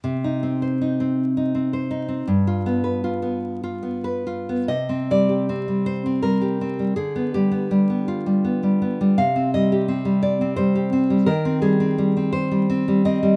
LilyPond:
\new Staff \with { instrumentName = "Nylon-string guitar" } { \time 6/8 \key c \minor \tempo 4. = 54 << { r2. | r2. | ees''8 d''4 c''8 bes'4 | aes'8 g'4 f'4. |
f''8 ees''4 d''8 c''4 | bes'8 aes'4 c''4 ees''8 | } \\ { c16 ees'16 c'16 c''16 ees'16 c'8 ees'16 c'16 c''16 ees'16 c'16 | g,16 f'16 b16 b'16 f'16 b8 f'16 b16 b'16 f'16 b16 | c16 c'16 g16 g'16 c'16 g8 c'16 g16 g'16 c'16 g16 | d16 b16 g16 b16 g16 b8 g16 b16 g16 b16 g16 |
c16 c'16 g16 g'16 c'16 g8 c'16 g16 g'16 c'16 g16 | ees16 c'16 g16 c'16 g16 c'8 g16 c'16 g16 c'16 g16 | } >> }